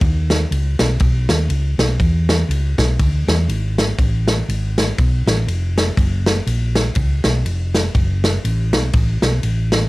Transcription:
0.01 D#2, kick, ride
0.30 snare, ride
0.51 C#2, ride
0.79 B1, snare, ride
1.00 B1, kick, ride
1.29 D#2, snare, ride
1.49 C#2, ride
1.78 B1, snare, ride
2.00 E2, kick, ride
2.29 snare, ride
2.49 C#2, ride
2.78 B1, kick, snare, ride
2.99 D2, kick, ride
3.27 E2, snare, ride
3.48 G#1, ride
3.78 snare, ride
3.98 A1, kick, ride
4.28 snare, ride
4.48 G#1, ride
4.78 snare, ride
4.98 B1, kick, ride
5.26 A1, snare, ride
5.47 F1, ride
5.78 snare, ride
5.97 F#1, kick, ride
6.26 snare, ride
6.47 A#1, ride
6.75 snare, ride
6.95 C#2, kick, ride
7.24 B1, snare, ride
7.45 F1, ride
7.75 snare, ride
7.95 F#1, kick, ride
8.24 snare, ride
8.44 A1, ride
8.73 B1, snare, ride
8.93 A1, kick, ride
9.22 B1, snare, ride
9.43 A1, ride
9.72 snare, ride

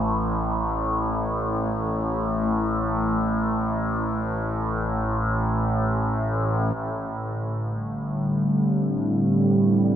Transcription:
Already playing: A1 A2
6.75 A1 A2
7.14 D3
7.66 G3
8.30 C4

